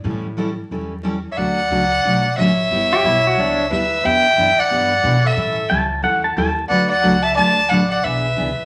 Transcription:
0.04 A2 E3 G3 C#4 E4 A4
0.37 E3 G3 C#4 E4 A4
0.71 E2 E3 G3 C#4 E4 A4
1.03 E3 G3 C#4 E4 A4
1.32 C#5 E5
1.37 D2 D3 F#3 A3 C#4 F#4 D5 F#5
1.70 C#2 D3 F#3 A3 C#4 F#4
2.04 B1 D3 F#3 A3 C#4 F#4
2.37 A1 D3 F#3 A3 C#4 F#4 C#5 E5
2.71 G1 G3 B3 E4 G4
2.93 G4
3.04 B1 G3 B3 E4 G4
3.27 F#4
3.37 C#2 G3 B3 D4 E4 G4
3.70 D2 G3 B3 E4 G4 B4 E5
4.03 E2 E3 B3 D4 G4 E5 G5
4.37 F#2 E3 B3 D4 G4
4.58 D5 F#5, muted upright bass stroke
4.70 G2 E3 B3 D4 G4
5.03 B2 E3 B3 D4 G4
5.26 A4 E5
5.36 A2 E3 G3 C#4 E4 A4
5.70 C#2 E3 G3 C#4 E4 A4 A5
6.02 E2 E3 G3 C#4 E4 A4 F#5
6.24 A5
6.37 D#2 E3 G3 C#4 E4 A4 A5
6.69 D2 D3 F#3 A3 D4 F#4 B4 D5 F#5
6.89 D5 F#5
7.03 C#2 D3 F#3 A3 D4 F#4 B4
7.22 E5 A5
7.36 D2 D3 F#3 A3 D4 F#4 B4 D5 A5
7.69 A1 D3 F#3 A3 D4 F#4 B4 D5 F#5
7.90 D5 F#5
8.03 B1 E3 B3 D4 G#4 B4 E5
8.37 C#2 E3 B3 D4 G#4
8.58 muted upright bass stroke

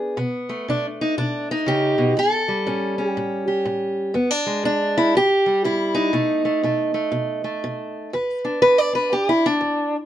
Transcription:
Already playing: E2 B3 D4 G#4
0.17 B2 B3
0.49 A3
0.68 B2 D4
1.01 D#4
1.18 B2 D4
1.51 D#4
1.66 C#3 G4
1.98 B2
2.17 A2 A4
2.48 G3
2.67 A2 C#4
2.98 C#4
3.10 G4
3.17 A2
3.48 G4
3.65 A2
4.14 E2 B3
4.31 D4
4.46 G#3
4.64 E2 D4
4.98 E4
5.15 A2 G4
5.46 G3
5.64 A2 E4
5.95 D#4
6.13 B2 A3
6.45 A3
6.63 B2 A3
6.94 A3
7.12 B2
7.44 A3
7.64 B2
8.13 E2 B4
8.45 D4
8.62 E2 B4
8.78 D5
8.93 D4 B4
9.12 E2 G4
9.29 E4
9.46 D4
9.61 E2

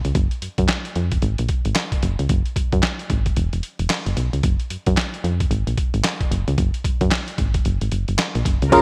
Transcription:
0.05 C#2, closed hi-hat
0.15 F#1, kick, closed hi-hat
0.31 closed hi-hat
0.42 F#2, closed hi-hat
0.58 F#2, kick, closed hi-hat
0.68 snare, clap, closed hi-hat
0.85 closed hi-hat
0.96 F2, closed hi-hat
1.11 kick, closed hi-hat
1.22 G#1, closed hi-hat
1.38 A#1, closed hi-hat
1.49 kick, closed hi-hat
1.65 G#1, closed hi-hat
1.76 snare, clap, closed hi-hat
1.92 kick, closed hi-hat
2.03 F#1, closed hi-hat
2.19 C#2, closed hi-hat
2.29 F#1, kick, closed hi-hat
2.46 closed hi-hat
2.56 F#2, kick, closed hi-hat
2.72 F#2, kick, closed hi-hat
2.83 snare, clap, closed hi-hat
2.99 closed hi-hat
3.10 G#1, kick, closed hi-hat
3.26 kick, closed hi-hat
3.36 E1, closed hi-hat
3.53 E1, closed hi-hat
3.63 closed hi-hat
3.79 E1, closed hi-hat
3.90 snare, clap, closed hi-hat
4.06 F#1, closed hi-hat
4.17 B1, closed hi-hat
4.33 C#2, closed hi-hat
4.43 F#1, kick, closed hi-hat
4.60 closed hi-hat
4.70 F#2, closed hi-hat
4.86 F#2, kick, closed hi-hat
4.97 snare, clap, closed hi-hat
5.14 closed hi-hat
5.24 F2, closed hi-hat
5.40 kick, closed hi-hat
5.51 G#1, closed hi-hat
5.67 A#1, closed hi-hat
5.78 kick, closed hi-hat
5.94 G#1, closed hi-hat
6.04 snare, clap, closed hi-hat
6.21 kick, closed hi-hat
6.31 F#1, closed hi-hat
6.48 C#2, closed hi-hat
6.58 F#1, kick, closed hi-hat
6.74 closed hi-hat
6.84 F#2, kick, closed hi-hat
7.01 F#2, kick, closed hi-hat
7.11 snare, clap, closed hi-hat
7.28 closed hi-hat
7.38 G#1, kick, closed hi-hat
7.54 kick, closed hi-hat
7.65 F#1, closed hi-hat
7.81 G#1, closed hi-hat
7.92 F#1, closed hi-hat
8.08 F#1, closed hi-hat
8.19 snare, clap, closed hi-hat
8.35 A#1, closed hi-hat
8.45 F#1, kick, closed hi-hat
8.62 C#2, closed hi-hat
8.72 F#1 C#3 F#3 G#3 C#4 F4 G#4 A#4, kick, closed hi-hat, crash, tambourine, cowbell

